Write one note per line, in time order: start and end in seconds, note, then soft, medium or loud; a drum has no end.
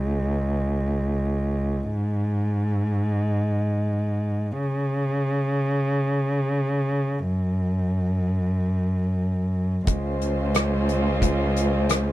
0.00 1.85 C#2 medium
1.83 4.53 G#2 medium
4.52 7.21 C#3 medium
7.19 9.84 F#2 medium
9.85 12.12 C#2 medium
9.85 12.12 G#3 medium
9.85 12.12 C#4 medium
9.85 12.12 F4 medium
9.85 12.12 C5 medium
9.85 kick medium
9.85 closed hi-hat medium
10.22 closed hi-hat soft
10.55 cross-stick medium
10.55 closed hi-hat medium
10.89 closed hi-hat soft
11.22 kick medium
11.22 closed hi-hat medium
11.57 closed hi-hat soft
11.89 cross-stick medium
11.89 closed hi-hat medium